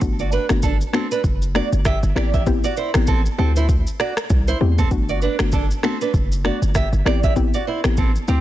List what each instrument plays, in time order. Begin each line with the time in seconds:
0.01 808-style bass G1, synth pluck A3 B3 D4 F#4, kick, shaker
0.19 nylon-string guitar F#4 D5, shaker
0.32 nylon-string guitar D4 B4, shaker
0.49 808-style bass G1, synth pluck A3 B3 D4 F#4, finger snap, cross-stick, shaker
0.63 nylon-string guitar D4 A4, kick, shaker
0.81 shaker
0.93 synth pluck A3 B3 D4 F#4, nylon-string guitar C4 A4, finger snap, cross-stick
1.11 nylon-string guitar D4 B4, shaker
1.24 808-style bass F#1, kick, shaker
1.42 shaker
1.55 synth pluck A3 B3 D4 F#4, nylon-string guitar F#4 D5, finger snap, cross-stick
1.72 808-style bass G1, shaker
1.85 nylon-string guitar G4 E5, finger snap, kick, cross-stick, shaker
2.03 808-style bass G1, shaker
2.16 808-style bass A1, synth pluck B3 C4 E4 G4, nylon-string guitar G4 D5, finger snap, cross-stick
2.34 nylon-string guitar G4 E5, kick, shaker
2.46 synth pluck B3 C4 E4 G4, kick, shaker
2.64 nylon-string guitar F#4 D5, shaker
2.77 nylon-string guitar E4 C5, shaker
2.94 808-style bass A1, synth pluck B3 C4 E4 G4, finger snap, cross-stick, shaker
3.07 nylon-string guitar C4 A4, kick, shaker
3.26 shaker
3.38 808-style bass D2, synth pluck A3 C4 E4 G4, nylon-string guitar C4 A4
3.56 nylon-string guitar E4 C5, shaker
3.69 kick, shaker
3.87 shaker
4.00 nylon-string guitar F#4 D5, finger snap, cross-stick
4.17 finger snap, cross-stick, shaker
4.30 808-style bass C2, kick, shaker
4.48 nylon-string guitar E4 C5, shaker
4.60 808-style bass E2, synth pluck A3 C4 E4 G4
4.78 nylon-string guitar C4 A4, kick, shaker
4.91 808-style bass G1, synth pluck A3 B3 D4 F#4, kick, shaker
5.09 nylon-string guitar F#4 D5, shaker
5.22 nylon-string guitar D4 B4, shaker
5.39 808-style bass G1, synth pluck A3 B3 D4 F#4, finger snap, cross-stick, shaker
5.52 nylon-string guitar D4 A4, kick, shaker
5.71 shaker
5.83 synth pluck A3 B3 D4 F#4, nylon-string guitar C4 A4, finger snap, cross-stick
6.01 nylon-string guitar D4 B4, shaker
6.14 808-style bass F#1, kick, shaker
6.32 shaker
6.44 synth pluck A3 B3 D4 F#4, nylon-string guitar F#4 D5, finger snap, cross-stick
6.62 808-style bass G1, shaker
6.75 nylon-string guitar G4 E5, finger snap, kick, cross-stick, shaker
6.93 808-style bass G1, shaker
7.05 808-style bass A1, synth pluck B3 C4 E4 G4, nylon-string guitar G4 D5, finger snap, cross-stick
7.24 nylon-string guitar G4 E5, kick, shaker
7.36 synth pluck B3 C4 E4 G4, kick, shaker
7.54 nylon-string guitar F#4 D5, shaker
7.67 nylon-string guitar E4 C5
7.84 808-style bass A1, synth pluck B3 C4 E4 G4, finger snap, cross-stick, shaker
7.97 nylon-string guitar C4 A4, kick, shaker
8.16 shaker
8.28 808-style bass D2, synth pluck A3 C4 E4 G4, nylon-string guitar C4 G4, shaker